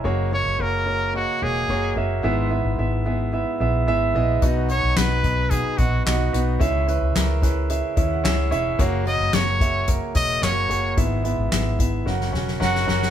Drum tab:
HH |----------------|----------------|x-x-x-x-x-x-x-x-|x-x-x-x-x-x-x-x-|
CP |----------------|----------------|----x-------x---|----x-------x---|
SD |----------------|----------------|----o-------o---|----o-o-----o---|
BD |----------------|----------------|o-----o-o-o-----|o-----o---o-----|

HH |x-x-x-x-x-x-x-x-|x-x-x-x---------|
CP |----x-------x---|----x-----------|
SD |----o-------o---|----o---oooooooo|
BD |o-----o-o-o-----|o-----o---------|